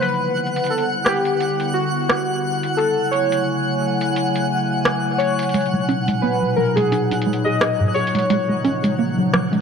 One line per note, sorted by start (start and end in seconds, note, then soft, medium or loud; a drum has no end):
0.00 2.76 D3 medium
0.00 2.76 G3 medium
0.00 2.76 B3 medium
0.00 5.50 E4 medium
0.00 0.73 B4 medium
0.00 9.61 F#5 medium
0.00 2.76 F#5 medium
0.00 closed hi-hat medium
0.09 closed hi-hat soft
0.14 closed hi-hat soft
0.37 closed hi-hat soft
0.47 closed hi-hat soft
0.56 closed hi-hat soft
0.64 closed hi-hat soft
0.66 0.84 A4 medium
0.66 closed hi-hat soft
0.78 closed hi-hat soft
1.04 1.70 G4 medium
1.04 cross-stick loud
1.25 closed hi-hat soft
1.40 closed hi-hat medium
1.60 closed hi-hat soft
1.73 2.81 F#4 medium
2.09 cross-stick loud
2.09 closed hi-hat medium
2.63 closed hi-hat soft
2.77 5.52 C#3 medium
2.77 9.61 F#3 medium
2.77 5.52 A3 medium
2.77 3.13 A4 medium
2.77 8.26 G#5 medium
2.77 closed hi-hat medium
3.11 4.46 C#5 medium
3.11 closed hi-hat soft
3.32 closed hi-hat soft
4.01 closed hi-hat soft
4.16 closed hi-hat medium
4.36 closed hi-hat soft
4.85 cross-stick loud
4.85 closed hi-hat medium
5.18 5.84 C#5 loud
5.18 closed hi-hat medium
5.39 closed hi-hat soft
5.43 closed hi-hat soft
5.49 closed hi-hat soft
5.54 9.61 A#2 medium
5.54 8.27 B2 medium
5.54 5.60 G#3 medium
5.54 9.61 D#4 medium
5.54 closed hi-hat medium
5.61 closed hi-hat soft
5.66 closed hi-hat soft
5.74 5.82 G#3 medium
5.89 5.95 C#4 loud
5.89 closed hi-hat soft
6.08 6.16 G#3 medium
6.08 closed hi-hat soft
6.22 6.39 B3 medium
6.22 6.58 B4 medium
6.42 6.55 F#3 medium
6.56 6.64 F#3 medium
6.56 6.77 A#4 medium
6.75 6.85 G#3 medium
6.75 7.41 G#4 medium
6.75 closed hi-hat soft
6.92 7.03 D#4 medium
6.92 closed hi-hat medium
7.11 7.24 D#4 medium
7.11 closed hi-hat soft
7.22 closed hi-hat soft
7.27 7.33 G#3 medium
7.33 closed hi-hat soft
7.44 7.54 G#4 medium
7.44 7.87 D#5 loud
7.61 7.71 G#4 medium
7.61 cross-stick loud
7.61 closed hi-hat medium
7.80 7.89 G#2 medium
7.88 7.95 D#5 medium
7.94 8.11 G#4 medium
7.94 8.94 C#5 medium
7.94 closed hi-hat soft
8.07 closed hi-hat soft
8.15 8.23 G#3 medium
8.15 closed hi-hat soft
8.19 closed hi-hat soft
8.30 9.61 C#3 medium
8.30 9.61 F3 medium
8.30 8.36 G#3 medium
8.30 closed hi-hat medium
8.49 8.58 G#3 medium
8.65 8.71 C#4 loud
8.65 closed hi-hat soft
8.84 8.92 G#3 medium
8.84 closed hi-hat soft
8.99 9.15 A#3 medium
9.18 9.31 F#3 medium
9.34 9.40 F#3 medium
9.34 cross-stick loud
9.53 9.61 G#3 medium
9.53 closed hi-hat soft